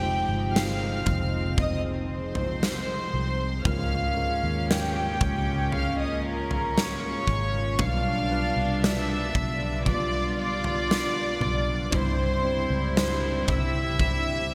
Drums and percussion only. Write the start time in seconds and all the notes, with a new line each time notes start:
0.56 snare
1.06 kick, floor tom
1.58 kick, floor tom
2.35 floor tom
2.63 snare
3.65 kick, floor tom
4.71 snare
5.21 kick, floor tom
5.72 floor tom
6.51 floor tom
6.78 snare
7.28 kick
7.79 kick, floor tom
8.84 snare
9.35 kick, floor tom
9.86 kick, floor tom
10.64 floor tom
10.91 snare
11.41 floor tom
11.92 kick, floor tom
12.97 snare
13.48 kick, floor tom
13.99 kick, floor tom